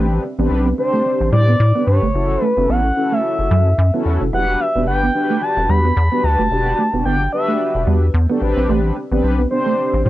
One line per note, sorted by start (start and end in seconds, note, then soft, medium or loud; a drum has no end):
0.00 0.19 A1 loud
0.00 0.23 C4 medium
0.00 0.23 D4 medium
0.00 0.24 G4 medium
0.00 0.24 B4 loud
0.24 muted clean electric guitar stroke soft
0.38 0.49 A1 loud
0.38 0.47 B3 medium
0.38 0.69 C4 medium
0.38 0.69 D4 medium
0.38 0.69 G4 medium
0.38 0.69 B4 loud
0.51 0.74 B1 loud
0.66 0.74 B3 medium
0.77 1.51 C4 medium
0.77 1.51 D4 medium
0.77 1.51 G4 medium
0.77 1.51 C5 medium
0.77 1.29 C5 medium
0.77 muted clean electric guitar stroke soft
0.93 1.01 A3 medium
1.05 muted clean electric guitar stroke soft
1.21 1.31 A1 medium
1.33 1.55 A2 loud
1.33 1.43 G3 medium
1.33 1.83 D5 medium
1.48 1.56 B3 medium
1.60 1.73 A2 loud
1.75 1.83 B3 medium
1.75 2.05 C4 medium
1.75 2.06 D4 medium
1.75 2.06 G4 medium
1.75 2.06 B4 medium
1.87 2.00 G2 medium
1.87 2.43 C#5 medium
1.87 muted clean electric guitar stroke soft
2.02 2.12 G1 medium
2.02 2.10 A3 medium
2.14 2.37 F#1 loud
2.14 2.45 C#4 medium
2.14 2.46 E4 medium
2.14 2.46 F#4 medium
2.14 2.46 A4 medium
2.30 muted clean electric guitar stroke soft
2.42 2.52 A3 medium
2.42 2.71 B4 medium
2.57 2.67 F#1 loud
2.57 2.65 B3 medium
2.57 2.87 C#4 medium
2.57 2.87 E4 medium
2.57 2.87 F#4 medium
2.57 2.88 A4 medium
2.69 2.92 A1 medium
2.69 2.79 B3 medium
2.69 3.14 F#5 loud
2.85 muted clean electric guitar stroke soft
2.96 3.69 C#4 medium
2.96 3.69 E4 medium
2.96 3.69 F#4 medium
2.96 3.70 A4 medium
3.12 3.20 A3 medium
3.12 3.94 E5 loud
3.39 3.49 F#1 medium
3.51 3.74 F#2 loud
3.51 3.61 F#3 medium
3.78 3.91 F#2 loud
3.93 4.01 B3 medium
3.93 4.24 C#4 medium
3.93 4.24 E4 medium
3.93 4.24 F#4 medium
3.93 4.24 A4 loud
4.05 4.18 E2 medium
4.05 muted clean electric guitar stroke soft
4.21 4.31 F1 medium
4.21 4.29 C#4 medium
4.32 4.56 E1 loud
4.32 4.64 D4 medium
4.32 4.43 E4 medium
4.32 4.64 F#4 medium
4.32 4.64 G4 medium
4.32 4.64 B4 medium
4.32 4.62 F#5 loud
4.60 4.87 E5 loud
4.60 muted clean electric guitar stroke soft
4.75 4.89 E1 medium
4.75 4.83 B3 medium
4.75 5.05 D4 medium
4.75 5.05 F#4 medium
4.75 5.06 G4 medium
4.75 5.06 B4 medium
4.87 5.10 G1 loud
4.87 5.44 G5 medium
5.03 5.11 B3 medium
5.14 5.87 D4 medium
5.14 5.88 F#4 medium
5.14 5.88 G4 medium
5.14 5.88 B4 medium
5.14 muted clean electric guitar stroke soft
5.30 5.38 A3 medium
5.42 5.71 A5 loud
5.42 muted clean electric guitar stroke medium
5.57 5.67 E1 loud
5.69 5.92 E2 loud
5.69 5.79 G3 medium
5.69 6.25 B5 loud
5.84 5.92 B3 medium
5.97 6.09 E2 loud
6.11 6.20 B3 medium
6.11 6.42 D4 medium
6.11 6.42 F#4 medium
6.11 6.42 G4 medium
6.11 6.42 B4 medium
6.23 6.36 D2 medium
6.23 7.05 A5 loud
6.23 muted clean electric guitar stroke soft
6.39 6.49 F1 medium
6.39 6.47 A3 medium
6.51 6.74 E1 loud
6.51 6.82 D4 medium
6.51 6.82 F#4 medium
6.51 6.82 G4 medium
6.51 6.82 B4 medium
6.66 muted clean electric guitar stroke soft
6.78 6.88 A3 medium
6.93 7.03 E1 medium
6.93 7.01 B3 medium
6.93 7.24 D4 medium
6.93 7.24 F#4 medium
6.93 7.24 G4 medium
6.93 7.24 D5 medium
7.05 7.28 G1 loud
7.05 7.15 B3 medium
7.05 7.31 G5 medium
7.21 muted clean electric guitar stroke soft
7.33 8.06 D4 medium
7.33 8.06 F#4 medium
7.33 8.06 G4 medium
7.33 8.06 B4 medium
7.33 7.83 E5 medium
7.48 7.56 A3 medium
7.75 7.85 E1 loud
7.87 8.10 E2 medium
7.87 7.97 G3 medium
8.14 8.27 E2 loud
8.29 8.38 B3 medium
8.29 8.40 D4 medium
8.29 8.42 F#4 medium
8.29 8.41 G4 medium
8.29 8.42 A4 medium
8.41 8.54 A1 medium
8.41 8.96 C4 medium
8.41 8.96 D4 medium
8.41 8.96 G4 medium
8.41 8.96 B4 loud
8.41 muted clean electric guitar stroke soft
8.57 8.67 A#1 medium
8.57 8.65 C4 medium
8.69 8.92 A1 loud
8.69 8.79 A3 medium
8.96 muted clean electric guitar stroke soft
9.11 9.22 A1 loud
9.11 9.20 B3 medium
9.11 9.42 C4 medium
9.11 9.42 D4 medium
9.11 9.42 G4 medium
9.11 9.42 B4 medium
9.23 9.46 B1 medium
9.39 9.47 B3 medium
9.51 9.58 B3 medium
9.51 10.10 D4 medium
9.51 10.10 G4 medium
9.51 10.01 C5 medium
9.51 10.10 C5 medium
9.51 muted clean electric guitar stroke soft
9.57 10.10 C4 medium
9.66 9.74 A3 medium
9.78 muted clean electric guitar stroke soft
9.94 10.04 A1 loud
10.05 10.10 A2 loud
10.05 10.10 G3 medium
10.05 10.10 D5 medium